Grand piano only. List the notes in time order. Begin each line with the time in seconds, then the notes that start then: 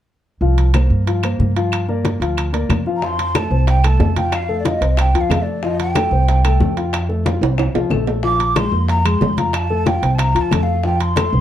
0.41 F3 F4 F5
0.74 A#3 A#4 C5
1.07 F3 F4 F5
1.24 A#3 A#4 C5
1.56 F3 F4 F5
1.89 A#3 A#4 D5
2.21 F3 F4 F5
2.53 A#3 A#4 D5
2.87 F3 F4 F5
3.02 F3 F4
3.35 A3 A4
3.51 C4 C5
3.84 A3 A4
4.16 F4 F5
4.49 A3 A4
4.65 F4 F5
4.81 C4 C5
5.15 F3 F4
5.31 A3 A4
5.64 F3 F4
5.96 A3 A4
6.12 C4 C5
6.45 A3 A4
6.77 F4 F5
7.09 A3 A4
7.25 F4 F5
7.41 C4 C5
7.74 F3 F4
7.91 A3 A4
8.23 F3 F4
8.56 G#3 G#4
8.72 A#3 A#4
9.05 G#3 G#4
9.38 F4 F5
9.70 A3 A4
9.86 F4 F5
10.03 C4 C5
10.35 F3 F4
10.51 A3 A4
10.84 F3 F4
11.17 A3 A4
11.33 C4 C5